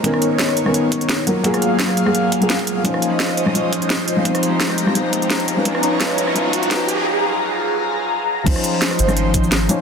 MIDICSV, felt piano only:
0, 0, Header, 1, 2, 480
1, 0, Start_track
1, 0, Tempo, 350877
1, 59, Time_signature, 4, 2, 24, 8
1, 13423, End_track
2, 0, Start_track
2, 0, Title_t, "Felt piano"
2, 0, Program_c, 0, 0
2, 43, Note_on_c, 0, 51, 81
2, 55, Note_on_c, 0, 59, 74
2, 58, Control_c, 0, 64, 127
2, 67, Note_on_c, 0, 61, 71
2, 79, Note_on_c, 0, 70, 89
2, 869, Note_off_c, 0, 51, 0
2, 875, Note_off_c, 0, 59, 0
2, 881, Note_off_c, 0, 61, 0
2, 886, Note_off_c, 0, 70, 0
2, 892, Note_on_c, 0, 51, 71
2, 902, Note_on_c, 0, 59, 70
2, 915, Note_on_c, 0, 61, 71
2, 925, Note_on_c, 0, 70, 82
2, 1705, Note_off_c, 0, 51, 0
2, 1710, Note_off_c, 0, 59, 0
2, 1716, Note_off_c, 0, 61, 0
2, 1721, Note_off_c, 0, 70, 0
2, 1731, Note_on_c, 0, 54, 76
2, 1738, Note_on_c, 0, 58, 71
2, 1742, Note_on_c, 0, 65, 73
2, 1750, Note_on_c, 0, 70, 87
2, 1759, Control_c, 0, 64, 0
2, 1942, Note_off_c, 0, 54, 0
2, 1952, Note_off_c, 0, 58, 0
2, 1954, Note_off_c, 0, 65, 0
2, 1958, Note_off_c, 0, 70, 0
2, 1963, Note_on_c, 0, 54, 102
2, 1966, Control_c, 0, 64, 127
2, 1974, Note_on_c, 0, 58, 91
2, 1986, Note_on_c, 0, 65, 90
2, 1997, Note_on_c, 0, 68, 106
2, 2788, Note_off_c, 0, 54, 0
2, 2794, Note_off_c, 0, 58, 0
2, 2800, Note_off_c, 0, 65, 0
2, 2805, Note_off_c, 0, 68, 0
2, 2818, Note_on_c, 0, 54, 79
2, 2822, Note_on_c, 0, 58, 67
2, 2828, Note_on_c, 0, 65, 70
2, 2834, Note_on_c, 0, 68, 85
2, 3147, Note_off_c, 0, 54, 0
2, 3150, Note_off_c, 0, 58, 0
2, 3152, Note_off_c, 0, 65, 0
2, 3156, Note_off_c, 0, 68, 0
2, 3289, Note_on_c, 0, 54, 79
2, 3301, Note_on_c, 0, 58, 71
2, 3312, Note_on_c, 0, 65, 67
2, 3324, Note_on_c, 0, 68, 84
2, 3863, Note_off_c, 0, 54, 0
2, 3869, Note_off_c, 0, 58, 0
2, 3875, Note_off_c, 0, 65, 0
2, 3879, Note_on_c, 0, 53, 74
2, 3881, Note_off_c, 0, 68, 0
2, 3890, Note_on_c, 0, 61, 66
2, 3900, Note_on_c, 0, 63, 71
2, 3913, Note_on_c, 0, 72, 83
2, 3917, Control_c, 0, 64, 0
2, 4183, Control_c, 0, 64, 127
2, 4706, Note_off_c, 0, 53, 0
2, 4712, Note_off_c, 0, 61, 0
2, 4717, Note_off_c, 0, 63, 0
2, 4724, Note_off_c, 0, 72, 0
2, 4729, Note_on_c, 0, 53, 71
2, 4741, Note_on_c, 0, 61, 64
2, 4752, Note_on_c, 0, 63, 62
2, 4763, Note_on_c, 0, 72, 76
2, 4824, Note_off_c, 0, 53, 0
2, 4836, Note_off_c, 0, 61, 0
2, 4844, Note_off_c, 0, 63, 0
2, 4844, Note_on_c, 0, 53, 76
2, 4849, Note_off_c, 0, 72, 0
2, 4856, Note_on_c, 0, 61, 69
2, 4869, Note_on_c, 0, 63, 67
2, 4879, Note_on_c, 0, 72, 80
2, 5669, Note_off_c, 0, 53, 0
2, 5675, Note_off_c, 0, 61, 0
2, 5681, Note_off_c, 0, 63, 0
2, 5686, Note_off_c, 0, 72, 0
2, 5694, Note_on_c, 0, 53, 73
2, 5706, Note_on_c, 0, 61, 65
2, 5716, Note_on_c, 0, 63, 66
2, 5728, Note_on_c, 0, 72, 81
2, 5783, Note_off_c, 0, 53, 0
2, 5801, Note_off_c, 0, 61, 0
2, 5804, Note_on_c, 0, 53, 74
2, 5806, Note_off_c, 0, 63, 0
2, 5812, Note_off_c, 0, 72, 0
2, 5815, Note_on_c, 0, 60, 72
2, 5826, Note_on_c, 0, 63, 68
2, 5837, Control_c, 0, 64, 0
2, 5839, Note_on_c, 0, 72, 86
2, 6053, Control_c, 0, 64, 127
2, 6629, Note_off_c, 0, 53, 0
2, 6635, Note_off_c, 0, 60, 0
2, 6640, Note_off_c, 0, 63, 0
2, 6646, Note_off_c, 0, 72, 0
2, 6650, Note_on_c, 0, 53, 69
2, 6664, Note_on_c, 0, 60, 65
2, 6674, Note_on_c, 0, 63, 67
2, 6685, Note_on_c, 0, 72, 78
2, 6745, Note_off_c, 0, 53, 0
2, 6756, Note_off_c, 0, 60, 0
2, 6765, Note_off_c, 0, 63, 0
2, 6765, Note_on_c, 0, 53, 80
2, 6770, Note_off_c, 0, 72, 0
2, 6777, Note_on_c, 0, 60, 69
2, 6788, Note_on_c, 0, 63, 70
2, 6798, Note_on_c, 0, 72, 85
2, 7515, Control_c, 0, 64, 0
2, 7590, Note_off_c, 0, 53, 0
2, 7595, Note_off_c, 0, 60, 0
2, 7601, Note_off_c, 0, 63, 0
2, 7606, Note_off_c, 0, 72, 0
2, 7612, Note_on_c, 0, 53, 73
2, 7623, Note_on_c, 0, 61, 70
2, 7635, Note_on_c, 0, 63, 72
2, 7645, Note_on_c, 0, 71, 86
2, 7704, Note_off_c, 0, 53, 0
2, 7716, Note_off_c, 0, 61, 0
2, 7725, Note_off_c, 0, 63, 0
2, 7725, Note_on_c, 0, 53, 78
2, 7730, Note_off_c, 0, 71, 0
2, 7737, Note_on_c, 0, 61, 74
2, 7749, Note_on_c, 0, 63, 72
2, 7755, Control_c, 0, 64, 127
2, 7760, Note_on_c, 0, 71, 87
2, 8184, Note_off_c, 0, 53, 0
2, 8195, Note_off_c, 0, 61, 0
2, 8205, Note_on_c, 0, 53, 82
2, 8206, Note_off_c, 0, 63, 0
2, 8212, Note_off_c, 0, 71, 0
2, 8215, Note_on_c, 0, 61, 72
2, 8227, Note_on_c, 0, 63, 75
2, 8239, Note_on_c, 0, 71, 90
2, 8662, Note_off_c, 0, 53, 0
2, 8675, Note_off_c, 0, 61, 0
2, 8683, Note_on_c, 0, 53, 84
2, 8684, Note_off_c, 0, 63, 0
2, 8691, Note_off_c, 0, 71, 0
2, 8695, Note_on_c, 0, 61, 76
2, 8705, Note_on_c, 0, 63, 76
2, 8717, Note_on_c, 0, 71, 90
2, 9142, Note_off_c, 0, 53, 0
2, 9153, Note_off_c, 0, 61, 0
2, 9162, Note_on_c, 0, 53, 76
2, 9164, Note_off_c, 0, 63, 0
2, 9170, Note_off_c, 0, 71, 0
2, 9173, Note_on_c, 0, 61, 70
2, 9185, Note_on_c, 0, 63, 71
2, 9196, Note_on_c, 0, 71, 85
2, 9439, Control_c, 0, 64, 0
2, 9633, Note_off_c, 0, 53, 0
2, 9638, Note_off_c, 0, 61, 0
2, 9644, Note_off_c, 0, 63, 0
2, 9647, Control_c, 0, 64, 127
2, 9650, Note_off_c, 0, 71, 0
2, 11563, Note_on_c, 0, 53, 82
2, 11574, Note_on_c, 0, 61, 75
2, 11585, Note_on_c, 0, 63, 76
2, 11596, Control_c, 0, 64, 0
2, 11597, Note_on_c, 0, 72, 92
2, 11877, Control_c, 0, 64, 127
2, 12388, Note_off_c, 0, 53, 0
2, 12394, Note_off_c, 0, 61, 0
2, 12400, Note_off_c, 0, 63, 0
2, 12405, Note_off_c, 0, 72, 0
2, 12413, Note_on_c, 0, 53, 74
2, 12424, Note_on_c, 0, 61, 69
2, 12437, Note_on_c, 0, 63, 68
2, 12448, Note_on_c, 0, 72, 85
2, 13225, Note_off_c, 0, 53, 0
2, 13231, Note_off_c, 0, 61, 0
2, 13237, Note_off_c, 0, 63, 0
2, 13243, Note_off_c, 0, 72, 0
2, 13253, Note_on_c, 0, 53, 81
2, 13259, Note_on_c, 0, 61, 74
2, 13264, Note_on_c, 0, 63, 76
2, 13272, Note_on_c, 0, 73, 88
2, 13423, Note_off_c, 0, 53, 0
2, 13423, Note_off_c, 0, 61, 0
2, 13423, Note_off_c, 0, 63, 0
2, 13423, Note_off_c, 0, 73, 0
2, 13423, End_track
0, 0, End_of_file